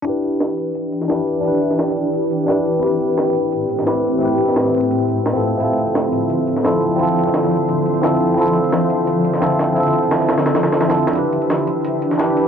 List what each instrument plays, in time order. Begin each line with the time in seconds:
0.02 ambient pad E3 D4 G4 B4, tine electric piano D4 E4, closed hi-hat
0.07 tine electric piano G4 B4
0.23 closed hi-hat
0.32 closed hi-hat
0.40 snare, closed hi-hat
0.50 closed hi-hat
0.58 closed hi-hat
0.75 closed hi-hat
0.92 closed hi-hat
1.01 snare, closed hi-hat
1.08 tine electric piano D4 E4 G4 B4, snare, closed hi-hat
1.27 closed hi-hat
1.41 tine electric piano D4 E4, closed hi-hat
1.45 tine electric piano G4 B4
1.53 closed hi-hat
1.61 closed hi-hat
1.71 snare, closed hi-hat
1.79 snare, closed hi-hat
1.88 snare
1.96 closed hi-hat
2.13 closed hi-hat
2.31 closed hi-hat
2.40 closed hi-hat
2.46 tine electric piano D4 E4 G4 B4, snare, closed hi-hat
2.65 closed hi-hat
2.80 ambient pad A2 C4 E5, tine electric piano C4 E4, closed hi-hat
2.84 tine electric piano G4 B4
3.00 closed hi-hat
3.09 closed hi-hat
3.17 snare, closed hi-hat
3.27 closed hi-hat
3.35 closed hi-hat
3.52 closed hi-hat
3.69 closed hi-hat
3.79 snare, closed hi-hat
3.85 tine electric piano C4 E4 G4 B4, snare, closed hi-hat
4.04 closed hi-hat
4.18 tine electric piano C4 E4, closed hi-hat
4.23 tine electric piano G4 B4
4.31 closed hi-hat
4.39 closed hi-hat
4.48 snare, closed hi-hat
4.56 snare, closed hi-hat
4.65 snare
4.74 closed hi-hat
4.91 closed hi-hat
5.08 closed hi-hat
5.18 closed hi-hat
5.26 snare, closed hi-hat
5.33 tine electric piano C4 E4 F4 A4
5.43 ambient pad D3 F3 C5, closed hi-hat
5.58 tine electric piano C4 E4, closed hi-hat
5.62 tine electric piano F4 A4
5.78 closed hi-hat
5.87 closed hi-hat
5.95 snare, closed hi-hat
6.04 closed hi-hat
6.13 closed hi-hat
6.30 closed hi-hat
6.47 closed hi-hat
6.56 snare, closed hi-hat
6.63 tine electric piano C4 E4 F4 A4, snare, closed hi-hat
6.82 closed hi-hat
6.96 tine electric piano C4 E4, closed hi-hat
7.00 tine electric piano F4 A4
7.08 closed hi-hat
7.17 closed hi-hat
7.26 snare, closed hi-hat
7.34 snare, closed hi-hat
7.43 snare
7.51 closed hi-hat
7.69 closed hi-hat
7.86 closed hi-hat
7.95 closed hi-hat
8.01 tine electric piano C4 E4 F4 A4, snare, closed hi-hat
8.21 closed hi-hat
8.34 tine electric piano C4 E4, closed hi-hat
8.39 tine electric piano F4 A4
8.55 closed hi-hat
8.64 closed hi-hat
8.72 snare, closed hi-hat
8.82 closed hi-hat
8.90 closed hi-hat
9.07 closed hi-hat
9.25 closed hi-hat
9.34 snare, closed hi-hat
9.40 tine electric piano C4 E4 F4 A4, snare, closed hi-hat
9.59 snare, closed hi-hat
9.69 closed hi-hat
9.73 tine electric piano C4 E4, closed hi-hat
9.78 tine electric piano F4 A4
9.94 closed hi-hat
10.03 closed hi-hat
10.11 snare, closed hi-hat
10.20 snare
10.28 snare, closed hi-hat
10.38 snare, closed hi-hat
10.46 snare, closed hi-hat
10.55 snare, closed hi-hat
10.63 snare, closed hi-hat
10.72 snare, closed hi-hat
10.80 snare, closed hi-hat
10.88 tine electric piano C4 E4 F4 A4, snare, closed hi-hat
10.98 closed hi-hat
11.07 snare, closed hi-hat
11.12 ambient pad E3 D4 G4 B4, tine electric piano D4 E4, closed hi-hat
11.16 tine electric piano G4 B4
11.32 closed hi-hat
11.42 closed hi-hat
11.50 snare, closed hi-hat
11.59 closed hi-hat
11.67 closed hi-hat
11.84 closed hi-hat
12.02 closed hi-hat
12.11 snare, closed hi-hat
12.18 tine electric piano D4 E4 G4 B4, snare, closed hi-hat
12.37 closed hi-hat